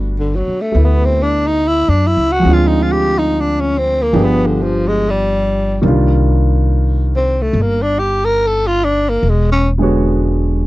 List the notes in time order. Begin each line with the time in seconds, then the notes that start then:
Already playing: G1 G3 A3 B3 D4 F#4
0.20 D3
0.36 F#3
0.48 muted upright bass stroke
0.61 A3
0.72 D2 A3 B3 E4
0.85 B3
1.05 C4
1.23 D4
1.47 D#4
1.68 E4
1.88 F#2 D4
2.07 E4
2.17 C#2
2.32 F#4
2.39 F3 G#3
2.45 D2 C4 D4
2.50 F4
2.67 D#4
2.83 F4
2.92 G4
3.18 D#4
3.40 D4
3.61 C#4
3.78 C4
4.02 A#3
4.13 G1 F3 B3 D4 G4 G#4
4.24 B3
4.46 D3
4.63 F3
4.87 G#3
5.10 G3
5.82 C2 D#3 G3 A#3
5.86 D4 F4
7.16 C4
7.42 A3
7.53 G1
7.62 A#3
7.82 D4
7.99 G4
8.25 A#4
8.47 A4
8.67 F4
8.84 D4
9.09 A#3
9.23 E1
9.29 G#3
9.52 C#4
9.78 D3 G#3 B3 C#5
9.83 F#4